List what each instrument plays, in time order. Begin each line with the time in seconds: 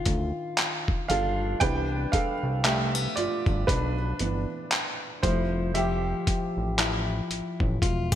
Already playing: grand piano D3 F3 G3 G4 A#4 G5, steel-string acoustic guitar D#3 D4 F4
0.05 analog synth bass D2, kick, closed hi-hat
0.58 clap, closed hi-hat
0.88 kick
1.08 analog synth bass G1, steel-string acoustic guitar G3 D4 F4, grand piano A4 F5, closed hi-hat
1.60 analog synth bass C2, grand piano E3 B3 D4 B4 G5, steel-string acoustic guitar D4, kick, closed hi-hat
2.12 grand piano A4 F5, kick, closed hi-hat
2.43 analog synth bass C2
2.64 steel-string acoustic guitar A3, grand piano G4 E5, clap, closed hi-hat
2.95 steel-string acoustic guitar B3
3.16 analog synth bass G1, grand piano F4 D5, closed hi-hat
3.46 analog synth bass G1, kick
3.67 analog synth bass B1, steel-string acoustic guitar D4, grand piano D4 B4, kick, closed hi-hat
4.19 analog synth bass G1, grand piano E3 B3 D4, closed hi-hat
4.71 clap, closed hi-hat
5.23 analog synth bass F1, steel-string acoustic guitar F3, grand piano G3 A3 E4 C5, kick, closed hi-hat
5.74 steel-string acoustic guitar F3 G4, grand piano G4 E5, closed hi-hat
6.27 kick, closed hi-hat
6.57 analog synth bass A1
6.78 steel-string acoustic guitar E4, clap, closed hi-hat
7.31 analog synth bass A1, closed hi-hat
7.60 analog synth bass A1, kick
7.82 analog synth bass E1, steel-string acoustic guitar F4, kick, closed hi-hat
8.12 steel-string acoustic guitar G4